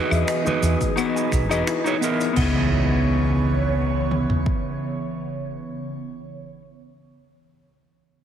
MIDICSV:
0, 0, Header, 1, 7, 480
1, 0, Start_track
1, 0, Key_signature, 4, "minor"
1, 0, Tempo, 697674
1, 1631, Time_signature, 4, 2, 24, 8
1, 5669, End_track
2, 0, Start_track
2, 0, Title_t, "Clean electric guitar"
2, 0, Program_c, 0, 27
2, 0, Note_on_c, 0, 63, 94
2, 0, Note_on_c, 0, 66, 89
2, 0, Note_on_c, 0, 68, 92
2, 0, Note_on_c, 0, 71, 109
2, 282, Note_off_c, 0, 63, 0
2, 286, Note_off_c, 0, 66, 0
2, 289, Note_off_c, 0, 68, 0
2, 292, Note_off_c, 0, 71, 0
2, 307, Note_on_c, 0, 63, 78
2, 314, Note_on_c, 0, 66, 68
2, 321, Note_on_c, 0, 68, 66
2, 328, Note_on_c, 0, 71, 86
2, 638, Note_off_c, 0, 63, 0
2, 642, Note_off_c, 0, 66, 0
2, 645, Note_off_c, 0, 68, 0
2, 649, Note_off_c, 0, 71, 0
2, 659, Note_on_c, 0, 63, 80
2, 665, Note_on_c, 0, 66, 72
2, 673, Note_on_c, 0, 68, 70
2, 680, Note_on_c, 0, 71, 89
2, 1002, Note_off_c, 0, 63, 0
2, 1005, Note_off_c, 0, 66, 0
2, 1009, Note_off_c, 0, 68, 0
2, 1012, Note_off_c, 0, 71, 0
2, 1028, Note_on_c, 0, 63, 71
2, 1035, Note_on_c, 0, 66, 68
2, 1042, Note_on_c, 0, 68, 68
2, 1049, Note_on_c, 0, 71, 81
2, 1242, Note_off_c, 0, 63, 0
2, 1246, Note_off_c, 0, 66, 0
2, 1249, Note_off_c, 0, 68, 0
2, 1253, Note_off_c, 0, 71, 0
2, 1268, Note_on_c, 0, 63, 91
2, 1274, Note_on_c, 0, 66, 85
2, 1281, Note_on_c, 0, 68, 86
2, 1288, Note_on_c, 0, 73, 105
2, 1340, Note_off_c, 0, 63, 0
2, 1343, Note_off_c, 0, 66, 0
2, 1346, Note_off_c, 0, 68, 0
2, 1350, Note_off_c, 0, 73, 0
2, 1383, Note_on_c, 0, 59, 75
2, 1389, Note_on_c, 0, 63, 66
2, 1397, Note_on_c, 0, 64, 69
2, 1402, Note_on_c, 0, 70, 84
2, 1594, Note_off_c, 0, 59, 0
2, 1603, Note_on_c, 0, 59, 86
2, 1615, Note_off_c, 0, 63, 0
2, 1623, Note_on_c, 0, 63, 79
2, 1635, Note_off_c, 0, 64, 0
2, 1643, Note_on_c, 0, 64, 80
2, 1660, Note_off_c, 0, 70, 0
2, 1663, Note_on_c, 0, 68, 99
2, 4541, Note_off_c, 0, 59, 0
2, 4551, Note_off_c, 0, 63, 0
2, 4561, Note_off_c, 0, 64, 0
2, 4571, Note_off_c, 0, 68, 0
2, 5669, End_track
3, 0, Start_track
3, 0, Title_t, "Synth pluck"
3, 0, Program_c, 1, 84
3, 76, Note_on_c, 1, 76, 74
3, 138, Note_off_c, 1, 76, 0
3, 190, Note_on_c, 1, 63, 80
3, 305, Note_off_c, 1, 63, 0
3, 669, Note_on_c, 1, 59, 94
3, 739, Note_off_c, 1, 59, 0
3, 795, Note_on_c, 1, 68, 80
3, 898, Note_off_c, 1, 68, 0
3, 1037, Note_on_c, 1, 75, 107
3, 1139, Note_off_c, 1, 75, 0
3, 1150, Note_on_c, 1, 64, 88
3, 1265, Note_off_c, 1, 64, 0
3, 1279, Note_on_c, 1, 63, 74
3, 1380, Note_off_c, 1, 63, 0
3, 1629, Note_on_c, 1, 59, 96
3, 1853, Note_off_c, 1, 59, 0
3, 5669, End_track
4, 0, Start_track
4, 0, Title_t, "Analog synth pad"
4, 0, Program_c, 2, 89
4, 0, Note_on_c, 2, 52, 83
4, 0, Note_on_c, 2, 59, 73
4, 0, Note_on_c, 2, 68, 91
4, 0, Note_on_c, 2, 75, 80
4, 1602, Note_off_c, 2, 59, 0
4, 1603, Note_off_c, 2, 52, 0
4, 1603, Note_off_c, 2, 68, 0
4, 1603, Note_off_c, 2, 75, 0
4, 1630, Note_on_c, 2, 49, 87
4, 1630, Note_on_c, 2, 73, 90
4, 1631, Note_on_c, 2, 59, 76
4, 1632, Note_on_c, 2, 52, 71
4, 4073, Note_off_c, 2, 73, 0
4, 4074, Note_off_c, 2, 49, 0
4, 4074, Note_off_c, 2, 52, 0
4, 4074, Note_off_c, 2, 59, 0
4, 5669, End_track
5, 0, Start_track
5, 0, Title_t, "Fretless electric bass"
5, 0, Program_c, 3, 35
5, 77, Note_on_c, 3, 40, 90
5, 148, Note_off_c, 3, 40, 0
5, 429, Note_on_c, 3, 40, 80
5, 510, Note_off_c, 3, 40, 0
5, 911, Note_on_c, 3, 35, 97
5, 1034, Note_off_c, 3, 35, 0
5, 1034, Note_on_c, 3, 28, 91
5, 1107, Note_off_c, 3, 28, 0
5, 1629, Note_on_c, 3, 37, 98
5, 3042, Note_off_c, 3, 37, 0
5, 5669, End_track
6, 0, Start_track
6, 0, Title_t, "Impact"
6, 0, Program_c, 4, 103
6, 1630, Note_on_c, 4, 60, 67
6, 4582, Note_off_c, 4, 60, 0
6, 5669, End_track
7, 0, Start_track
7, 0, Title_t, "Drums"
7, 78, Note_on_c, 9, 75, 78
7, 83, Note_on_c, 9, 42, 63
7, 85, Note_on_c, 9, 69, 46
7, 147, Note_off_c, 9, 75, 0
7, 152, Note_off_c, 9, 42, 0
7, 154, Note_off_c, 9, 69, 0
7, 189, Note_on_c, 9, 42, 68
7, 193, Note_on_c, 9, 26, 100
7, 198, Note_on_c, 9, 69, 60
7, 257, Note_off_c, 9, 42, 0
7, 262, Note_off_c, 9, 26, 0
7, 267, Note_off_c, 9, 69, 0
7, 320, Note_on_c, 9, 69, 44
7, 321, Note_on_c, 9, 63, 79
7, 322, Note_on_c, 9, 64, 79
7, 389, Note_off_c, 9, 69, 0
7, 390, Note_off_c, 9, 63, 0
7, 391, Note_off_c, 9, 64, 0
7, 429, Note_on_c, 9, 42, 69
7, 436, Note_on_c, 9, 69, 82
7, 498, Note_off_c, 9, 42, 0
7, 505, Note_off_c, 9, 69, 0
7, 555, Note_on_c, 9, 42, 60
7, 557, Note_on_c, 9, 36, 90
7, 559, Note_on_c, 9, 69, 52
7, 562, Note_on_c, 9, 63, 58
7, 624, Note_off_c, 9, 42, 0
7, 626, Note_off_c, 9, 36, 0
7, 628, Note_off_c, 9, 69, 0
7, 631, Note_off_c, 9, 63, 0
7, 668, Note_on_c, 9, 42, 72
7, 675, Note_on_c, 9, 69, 58
7, 675, Note_on_c, 9, 75, 87
7, 737, Note_off_c, 9, 42, 0
7, 744, Note_off_c, 9, 69, 0
7, 744, Note_off_c, 9, 75, 0
7, 804, Note_on_c, 9, 69, 40
7, 873, Note_off_c, 9, 69, 0
7, 909, Note_on_c, 9, 26, 31
7, 909, Note_on_c, 9, 42, 51
7, 910, Note_on_c, 9, 36, 59
7, 912, Note_on_c, 9, 69, 73
7, 978, Note_off_c, 9, 26, 0
7, 978, Note_off_c, 9, 42, 0
7, 979, Note_off_c, 9, 36, 0
7, 981, Note_off_c, 9, 69, 0
7, 1039, Note_on_c, 9, 42, 54
7, 1040, Note_on_c, 9, 75, 60
7, 1043, Note_on_c, 9, 69, 46
7, 1107, Note_off_c, 9, 42, 0
7, 1109, Note_off_c, 9, 75, 0
7, 1112, Note_off_c, 9, 69, 0
7, 1152, Note_on_c, 9, 26, 100
7, 1153, Note_on_c, 9, 42, 69
7, 1155, Note_on_c, 9, 69, 61
7, 1221, Note_off_c, 9, 26, 0
7, 1222, Note_off_c, 9, 42, 0
7, 1224, Note_off_c, 9, 69, 0
7, 1281, Note_on_c, 9, 69, 40
7, 1349, Note_off_c, 9, 69, 0
7, 1389, Note_on_c, 9, 42, 52
7, 1396, Note_on_c, 9, 69, 85
7, 1458, Note_off_c, 9, 42, 0
7, 1465, Note_off_c, 9, 69, 0
7, 1519, Note_on_c, 9, 69, 50
7, 1524, Note_on_c, 9, 42, 55
7, 1588, Note_off_c, 9, 69, 0
7, 1593, Note_off_c, 9, 42, 0
7, 1624, Note_on_c, 9, 49, 88
7, 1630, Note_on_c, 9, 36, 108
7, 1693, Note_off_c, 9, 49, 0
7, 1699, Note_off_c, 9, 36, 0
7, 2830, Note_on_c, 9, 47, 61
7, 2899, Note_off_c, 9, 47, 0
7, 2957, Note_on_c, 9, 43, 73
7, 3025, Note_off_c, 9, 43, 0
7, 3070, Note_on_c, 9, 36, 93
7, 3139, Note_off_c, 9, 36, 0
7, 5669, End_track
0, 0, End_of_file